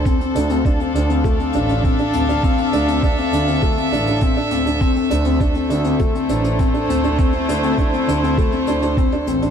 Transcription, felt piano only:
X:1
M:4/4
L:1/16
Q:1/4=101
K:Dm
V:1 name="Felt piano"
C C D C D C D C A, C D D C D C D | C C D C D C D C A, C D D C D C D | C C D C D C D C A, C D D C D C D | C C D C D C D C A, C D D C D C D |]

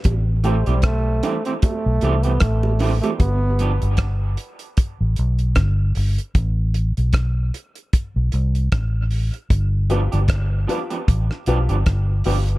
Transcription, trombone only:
X:1
M:4/4
L:1/16
Q:"Swing 16ths" 1/4=76
K:Am
V:1 name="Trombone"
z2 A, G, A,3 C A,3 B, A,3 A, | B,3 z12 z | z16 | z16 |]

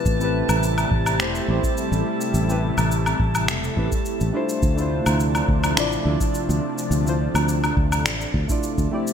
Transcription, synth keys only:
X:1
M:4/4
L:1/16
Q:1/4=105
K:Am
V:1 name="Synth keys"
[A,CEGB] [A,CEGB]6- [A,CEGB] [A,CEGc]2 [A,CEGc]6- | [A,CEGc] [A,CEGB] z8 [A,CEGB] z3 [A,DEFc]2- | [A,DEFc] [A,DEFc]6- [A,DEFc] [A,DEFd]2 [A,DEFd]6- | [A,DEFd] [A,DEFc] z8 z [A,DEFd]3 [A,CEGd]2 |]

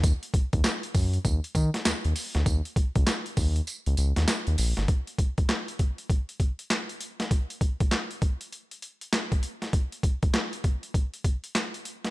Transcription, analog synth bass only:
X:1
M:4/4
L:1/16
Q:"Swing 16ths" 1/4=99
K:Db
V:1 name="Analog synth bass" clef=bass
E,, z2 E,, z2 G,,2 E,, z E, z E,, E,, z =D,, | E,, z2 D,, z2 E,,2 z D,, D,, E,, z E,, B,,, =G,,, | z16 | z16 |
z16 |]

